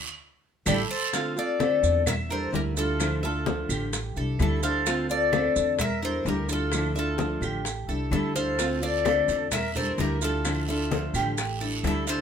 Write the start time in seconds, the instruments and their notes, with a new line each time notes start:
0.66 upright bass A1, nylon-string guitar G3 A3 D4, flute E4, cuban tres G4 A4 D5, low bongo, high conga, long guiro, claves, maracas
0.90 flute A4, cuban tres C5
1.13 nylon-string guitar D3 A3 C4 F4, cuban tres F4, high bongo, high conga, maracas
1.36 nylon-string guitar A3 C4 F4, flute A4, cuban tres D5, high bongo, high conga, maracas
1.59 nylon-string guitar D3 A3 C4 F4, cuban tres A4, high bongo, high conga, claves, maracas
1.83 upright bass E2, high bongo, maracas
2.06 flute A#4, cuban tres E5, muted nylon-string guitar stroke, high bongo, high conga, low conga, claves, maracas
2.29 nylon-string guitar G3 D4 E4, flute A4, cuban tres A#4 C5, high conga, maracas
2.52 upright bass D2, nylon-string guitar D3 G3 D4 E4, flute G4, cuban tres A#4, high bongo, low bongo, high conga, maracas
2.76 nylon-string guitar G3 D4 E4, flute F4, cuban tres A4, high bongo, maracas
3.00 nylon-string guitar D3 F3 A3 D4 E4, high bongo, high conga, claves, maracas
3.22 nylon-string guitar A3 D4 E4, flute F4, cuban tres A4 E5, high bongo, high conga, maracas
3.46 nylon-string guitar D3 F3 A3 D4, high bongo, high conga, maracas
3.69 upright bass A1, cuban tres G4, high bongo, high conga, claves, maracas
3.93 muted nylon-string guitar stroke, high bongo, high conga, maracas
4.16 upright bass C2, nylon-string guitar G3 D4 E4, cuban tres A4, high conga, maracas
4.39 upright bass D2, nylon-string guitar D3 G3 D4 E4, flute E4, cuban tres A4, high bongo, low bongo, high conga, claves, maracas
4.62 nylon-string guitar G3 D4 E4, flute A4, cuban tres C5 F5, high bongo, high conga, maracas
4.86 nylon-string guitar D3 A3 C4 F4, cuban tres F4, high bongo, high conga, maracas
5.09 nylon-string guitar A3 C4 F4, flute A4, cuban tres D5, high bongo, high conga, maracas
5.33 nylon-string guitar D3 A3 C4 F4, cuban tres A4, high bongo, high conga, claves, maracas
5.56 upright bass E2, high bongo, maracas
5.79 flute A#4, cuban tres E5, muted nylon-string guitar stroke, high bongo, high conga, low conga, claves, maracas
6.02 nylon-string guitar G3 D4 E4, flute A4, cuban tres A#4 C5, high conga, maracas
6.25 upright bass D2, nylon-string guitar D3 G3 D4 E4, flute G4, cuban tres A#4, high bongo, low bongo, high conga, maracas
6.49 nylon-string guitar G3 D4 E4, flute F4, cuban tres A4, high bongo, high conga, maracas
6.72 nylon-string guitar D3 F3 A3 D4 E4, high bongo, high conga, claves, maracas
6.95 nylon-string guitar A3 D4 E4, flute F4, cuban tres A4 E5, high bongo, high conga, maracas
7.18 nylon-string guitar D3 F3 A3 D4, high bongo, high conga, maracas
7.41 upright bass A1, cuban tres G4, high bongo, high conga, claves, maracas
7.65 muted nylon-string guitar stroke, high bongo, high conga, maracas
7.88 upright bass C2, nylon-string guitar G3 D4 E4, cuban tres A4, high conga, maracas
8.11 upright bass D2, nylon-string guitar D3 G3 D4 E4, flute E4, cuban tres A4, high bongo, low bongo, high conga, claves, maracas
8.35 nylon-string guitar G3 D4 E4, flute A4, cuban tres C5 F5, high bongo, high conga, maracas
8.59 nylon-string guitar D3 A3 C4 F4, cuban tres F4, high bongo, high conga, long guiro, maracas
8.81 nylon-string guitar A3 C4 F4, flute A4, cuban tres D5, high bongo, high conga, maracas
9.05 nylon-string guitar D3 A3 C4 F4, cuban tres A4, high bongo, high conga, short guiro, claves, maracas
9.28 upright bass E2, high bongo, short guiro, maracas
9.51 flute A#4, cuban tres E5, muted nylon-string guitar stroke, high bongo, high conga, low conga, long guiro, claves, maracas
9.75 nylon-string guitar G3 D4 E4, flute A4, cuban tres A#4 C5, high conga, low conga, maracas
9.98 upright bass D2, nylon-string guitar D3 G3 D4 E4, flute G4, cuban tres A#4, high bongo, low bongo, high conga, short guiro, maracas
10.21 nylon-string guitar G3 D4 E4, flute F4, cuban tres A4, high bongo, high conga, short guiro, maracas
10.45 nylon-string guitar D3 F3 A3 D4 E4, high bongo, high conga, long guiro, claves, maracas
10.68 nylon-string guitar A3 D4 E4, flute F4, cuban tres A4 E5, high bongo, high conga, maracas
10.91 nylon-string guitar D3 F3 A3 D4, high bongo, high conga, short guiro, maracas
11.14 upright bass A1, cuban tres G4, high bongo, high conga, short guiro, claves, maracas
11.37 muted nylon-string guitar stroke, high bongo, high conga, long guiro, maracas
11.61 nylon-string guitar G3 D4 E4, cuban tres A4, high conga, maracas
11.83 upright bass D2, nylon-string guitar D3 G3 D4 E4, flute E4, cuban tres A4, high bongo, low bongo, high conga, short guiro, claves, maracas
12.07 nylon-string guitar G3 D4 E4, flute A4, cuban tres C5 F5, high bongo, short guiro, maracas